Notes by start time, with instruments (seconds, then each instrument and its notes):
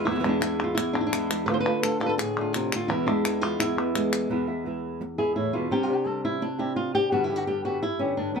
0.05 nylon-string guitar E2 B2 E3 G#3 B3 E4
0.11 nylon-string guitar B2 E3 G#3 B3 E4
0.15 nylon-string guitar B2 E3 G#3 B3 E4
0.19 nylon-string guitar B2 E3 G#3 B3 E4
0.24 nylon-string guitar E2 B2 E3 G#3 B3 E4
0.29 nylon-string guitar D4
0.41 nylon-string guitar E3 G#3 B3 E4, clap
0.64 nylon-string guitar F4
0.75 nylon-string guitar E2 E4, muted nylon-string guitar stroke, clap
0.93 nylon-string guitar D4
1.01 nylon-string guitar E4
1.07 nylon-string guitar D4
1.13 nylon-string guitar E3 G#3 B3 E4, clap
1.30 nylon-string guitar E3 G#3 B3 E4, clap
1.46 nylon-string guitar D3 A3 D4 F4 B4
1.54 nylon-string guitar C5
1.60 nylon-string guitar B4
1.65 nylon-string guitar A3 D4 F4
1.83 nylon-string guitar D3 A3 D4 F4 A4, clap
2.00 nylon-string guitar A3 D4 F4 A4
2.06 nylon-string guitar A4 B4
2.18 nylon-string guitar A2 G#4, muted nylon-string guitar stroke, clap
2.37 nylon-string guitar A3 D4 F4
2.53 nylon-string guitar C3 E4, clap
2.72 nylon-string guitar D3 F4, clap
2.88 nylon-string guitar E2 B2 E3 G#3 B3 E4
3.06 nylon-string guitar E3 G#3 B3 D4 E4
3.24 nylon-string guitar E3 G#3 B3 E4, clap
3.41 nylon-string guitar E3 G#3 B3 E4 F4
3.59 nylon-string guitar E2 E4, muted nylon-string guitar stroke, clap
3.77 nylon-string guitar E3 G#3 B3 E4
3.95 nylon-string guitar G#3, clap
4.13 clap
4.30 nylon-string guitar E2 B2 E3 G#3 B3 E4
4.47 nylon-string guitar E3 G#3 B3 E4
4.65 nylon-string guitar E3 G#3 B3 E4
5.01 muted nylon-string guitar stroke
5.18 nylon-string guitar E3 G#3 B3 E4 G#4
5.36 nylon-string guitar A2 E4
5.53 nylon-string guitar B2 E3 G#3 B3 E4 F4
5.71 nylon-string guitar C3 G3 C4 D4 G4
5.83 nylon-string guitar F4
5.88 nylon-string guitar C4 D4 G4
5.95 nylon-string guitar G4
6.06 nylon-string guitar G3 C4 D4 G4 A4
6.25 nylon-string guitar E4
6.41 nylon-string guitar D4, muted nylon-string guitar stroke
6.58 nylon-string guitar C4 D4 E4 G4
6.76 nylon-string guitar F4
6.94 nylon-string guitar C4 D4 G4
7.12 nylon-string guitar G2 B2 D3 G3 B3 F#4 G4
7.24 nylon-string guitar E4
7.30 nylon-string guitar D3 G3 B3 G4
7.36 nylon-string guitar F#4
7.47 nylon-string guitar D3 G3 B3 G4
7.65 nylon-string guitar D3 G3 B3 F#4 G4
7.83 nylon-string guitar E4, muted nylon-string guitar stroke
7.99 nylon-string guitar D3 G3 B3 C#4 G4
8.17 nylon-string guitar G2 D4
8.35 nylon-string guitar F#2 B3